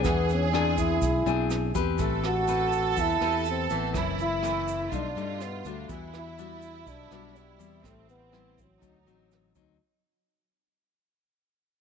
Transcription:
0.00 0.38 B3 medium
0.00 0.50 D4 medium
0.00 0.50 G#4 medium
0.00 1.71 G#4 loud
0.04 0.98 E2 medium
0.04 1.00 E3 soft
0.04 kick medium
0.04 cross-stick medium
0.04 closed hi-hat medium
0.04 shaker medium
0.29 closed hi-hat soft
0.29 shaker soft
0.36 0.51 C#4 medium
0.52 1.22 C4 medium
0.52 0.75 D4 medium
0.52 1.22 D4 medium
0.52 1.23 G#4 medium
0.52 cross-stick medium
0.52 closed hi-hat soft
0.78 1.71 E4 medium
0.78 kick soft
0.78 closed hi-hat soft
0.78 shaker medium
1.01 1.24 B1 medium
1.01 kick medium
1.01 closed hi-hat medium
1.01 shaker medium
1.26 1.71 B1 medium
1.26 1.71 C4 medium
1.26 1.71 D4 medium
1.26 1.72 G#4 medium
1.26 closed hi-hat soft
1.26 shaker soft
1.50 cross-stick medium
1.50 closed hi-hat soft
1.50 shaker medium
1.75 1.98 E2 medium
1.75 2.44 C4 medium
1.75 2.44 G4 medium
1.75 2.45 B4 medium
1.75 kick medium
1.75 closed hi-hat soft
1.75 shaker medium
1.98 2.93 A1 medium
1.98 2.94 A3 medium
1.98 3.90 A4 loud
1.98 kick medium
1.98 closed hi-hat medium
1.98 shaker medium
2.24 3.03 F#4 loud
2.24 cross-stick medium
2.24 closed hi-hat soft
2.24 shaker soft
2.48 3.17 C4 medium
2.48 3.18 B4 medium
2.48 closed hi-hat soft
2.48 shaker soft
2.72 closed hi-hat soft
2.72 shaker medium
2.96 3.20 E2 medium
2.96 3.69 E3 medium
2.96 kick medium
2.96 closed hi-hat medium
2.96 shaker medium
3.01 3.48 E4 loud
3.21 3.67 E2 medium
3.21 3.67 C4 medium
3.21 3.67 G4 medium
3.21 3.67 B4 medium
3.21 cross-stick medium
3.21 closed hi-hat soft
3.21 shaker soft
3.45 closed hi-hat soft
3.45 shaker medium
3.50 3.76 C4 medium
3.70 3.93 A1 medium
3.70 4.40 E3 medium
3.70 4.40 A3 medium
3.70 4.40 C4 medium
3.70 closed hi-hat soft
3.70 shaker medium
3.74 3.97 B3 medium
3.94 4.88 F#1 medium
3.94 4.89 F#2 soft
3.94 4.88 E4 loud
3.94 kick medium
3.94 cross-stick medium
3.94 closed hi-hat medium
3.94 shaker medium
4.18 closed hi-hat soft
4.18 shaker soft
4.22 4.96 E4 loud
4.43 4.90 E3 medium
4.43 4.90 A3 medium
4.43 4.90 C4 medium
4.43 cross-stick medium
4.43 closed hi-hat soft
4.43 shaker medium
4.68 closed hi-hat soft
4.68 shaker medium
4.91 5.15 B1 medium
4.91 5.87 B2 soft
4.91 5.06 G3 soft
4.91 5.06 A3 medium
4.91 5.07 D#4 medium
4.91 5.89 F4 loud
4.91 kick medium
4.91 closed hi-hat medium
4.91 shaker medium
4.95 5.46 D4 loud
5.16 5.62 G2 medium
5.16 5.62 G3 medium
5.16 5.62 A3 medium
5.16 5.62 D#4 medium
5.16 closed hi-hat soft
5.16 shaker soft
5.41 cross-stick medium
5.41 closed hi-hat soft
5.41 shaker soft
5.45 5.70 B3 medium
5.65 5.88 D2 medium
5.65 6.35 G3 medium
5.65 5.91 A3 medium
5.65 6.35 D4 medium
5.65 6.35 F#4 medium
5.65 closed hi-hat soft
5.65 shaker medium
5.89 6.83 E2 medium
5.89 6.85 E3 soft
5.89 7.81 E4 loud
5.89 kick medium
5.89 closed hi-hat medium
5.89 shaker medium
6.13 cross-stick medium
6.13 closed hi-hat soft
6.13 shaker soft
6.18 6.91 E4 loud
6.38 7.08 G3 medium
6.38 7.08 D4 medium
6.38 7.08 F#4 medium
6.38 closed hi-hat soft
6.38 shaker soft
6.62 closed hi-hat soft
6.62 shaker medium
6.86 7.10 B1 medium
6.86 7.82 B2 soft
6.86 7.38 D4 loud
6.86 kick medium
6.86 closed hi-hat soft
6.86 shaker medium
7.11 7.57 B1 medium
7.11 7.57 G3 medium
7.11 7.57 D4 medium
7.11 7.57 F#4 medium
7.11 cross-stick medium
7.11 closed hi-hat soft
7.11 shaker soft
7.35 7.88 G3 medium
7.35 closed hi-hat soft
7.35 shaker medium
7.59 7.83 E2 medium
7.59 8.29 G3 medium
7.59 8.30 C4 medium
7.59 8.30 E4 medium
7.59 closed hi-hat soft
7.59 shaker medium
7.83 8.78 A1 medium
7.83 8.79 A2 medium
7.83 8.10 A3 medium
7.83 8.82 C4 medium
7.83 kick medium
7.83 cross-stick medium
7.83 closed hi-hat medium
7.83 shaker medium
8.09 8.62 B3 medium
8.09 closed hi-hat soft
8.09 shaker soft
8.32 8.66 G3 medium
8.32 8.66 C4 medium
8.32 8.66 E4 medium
8.32 cross-stick medium
8.32 closed hi-hat soft
8.58 9.57 F#3 medium
8.58 kick soft
8.58 closed hi-hat soft
8.58 shaker medium
8.80 9.05 D2 medium
8.80 9.77 D3 soft
8.80 8.97 F#3 medium
8.80 8.96 C4 medium
8.80 9.55 D#4 medium
8.80 8.97 D#4 medium
8.80 kick medium
8.80 closed hi-hat medium
8.80 shaker medium
9.05 9.52 A1 medium
9.05 9.52 F#3 medium
9.05 9.52 C4 medium
9.05 9.52 D#4 medium
9.05 closed hi-hat soft
9.05 shaker soft
9.31 cross-stick medium
9.31 closed hi-hat soft
9.31 shaker medium
9.55 9.78 D2 medium
9.55 9.76 F#3 medium
9.55 9.77 C4 medium
9.55 9.77 D#4 medium
9.55 kick medium
9.55 closed hi-hat soft
9.55 shaker medium

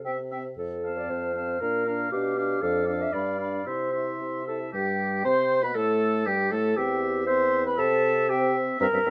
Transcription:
0.04 0.52 C3 soft
0.04 0.17 C4 soft
0.04 0.18 E5 soft
0.04 0.11 G5 soft
0.32 0.44 C4 soft
0.32 0.44 E5 soft
0.32 0.38 G5 soft
0.58 1.04 F2 soft
0.58 0.99 A4 medium
0.83 1.34 C4 soft
0.83 1.35 F5 soft
0.83 1.35 A5 soft
0.98 1.12 D5 medium
1.10 1.55 F2 soft
1.10 1.62 C5 medium
1.35 1.61 C4 soft
1.35 1.61 F5 soft
1.35 1.60 A5 soft
1.61 2.06 A#2 medium
1.61 1.86 D4 soft
1.61 2.11 A#4 medium
1.61 1.86 F5 medium
1.61 1.86 A#5 soft
1.87 2.11 D4 medium
1.87 2.12 F5 medium
1.87 2.11 A#5 soft
2.12 2.57 B2 medium
2.12 2.37 D4 soft
2.12 2.63 G4 medium
2.12 2.37 F5 soft
2.12 2.37 D6 soft
2.37 2.62 D4 medium
2.37 2.61 F5 soft
2.37 2.62 D6 soft
2.62 3.08 F2 medium
2.62 2.87 D4 soft
2.62 3.03 A4 medium
2.62 2.86 F5 medium
2.62 2.87 D6 medium
2.86 3.13 D4 soft
2.86 3.12 F5 soft
2.86 3.14 D6 soft
3.02 3.14 E5 medium
3.12 3.60 G2 medium
3.12 3.39 D4 soft
3.12 3.66 D5 medium
3.12 3.38 F5 soft
3.12 3.40 B5 soft
3.39 3.66 D4 soft
3.39 3.65 F5 soft
3.39 3.66 B5 soft
3.66 4.14 C3 soft
3.66 3.93 E4 soft
3.66 4.19 C5 medium
3.66 3.91 E5 soft
3.66 3.93 C6 soft
3.92 4.46 E4 soft
3.92 4.45 E5 soft
3.92 4.46 C6 soft
4.21 4.68 C3 soft
4.46 4.73 E4 soft
4.46 4.59 A4 medium
4.46 4.72 E5 soft
4.46 4.76 A5 medium
4.73 5.22 G2 medium
4.73 5.26 G3 medium
4.73 5.21 G4 medium
4.73 5.24 G4 medium
4.73 5.27 G5 medium
5.24 5.65 C3 medium
5.24 5.62 C4 medium
5.24 5.62 C5 medium
5.24 5.64 C5 medium
5.24 5.63 C6 medium
5.63 5.78 B2 medium
5.63 5.74 B3 medium
5.63 5.77 B4 medium
5.63 5.76 B4 medium
5.63 5.69 B5 medium
5.75 6.28 A2 medium
5.75 6.25 A3 medium
5.75 6.28 A4 medium
5.75 6.27 A4 medium
5.75 6.29 A5 medium
6.26 6.52 G2 medium
6.26 6.53 G3 medium
6.26 6.52 G4 medium
6.26 6.53 G4 medium
6.26 6.51 G5 medium
6.51 6.77 A2 medium
6.51 6.77 A3 medium
6.51 6.76 A4 medium
6.51 6.78 A4 medium
6.51 6.79 A5 medium
6.77 7.80 E2 medium
6.77 7.24 C4 medium
6.77 7.26 G4 medium
6.77 7.24 E5 medium
6.77 7.05 G5 medium
7.26 7.77 C4 medium
7.26 7.64 C5 loud
7.26 7.62 E5 medium
7.26 7.65 C6 medium
7.66 7.80 B4 medium
7.66 7.80 B5 medium
7.77 8.64 C3 medium
7.77 8.14 C4 medium
7.77 8.31 A4 loud
7.77 8.28 E5 medium
7.77 8.31 A5 medium
8.29 8.79 C4 medium
8.29 8.55 G4 medium
8.29 8.79 E5 medium
8.29 8.55 G5 medium
8.80 8.86 G2 loud
8.80 8.86 C4 medium
8.80 9.10 A#4 loud
8.80 8.86 E5 medium
8.80 9.10 A#5 medium
8.93 8.99 G2 medium
8.93 8.99 C4 medium
8.93 8.99 E5 medium
9.05 9.10 G2 medium
9.05 9.10 C4 medium
9.05 9.10 E5 medium

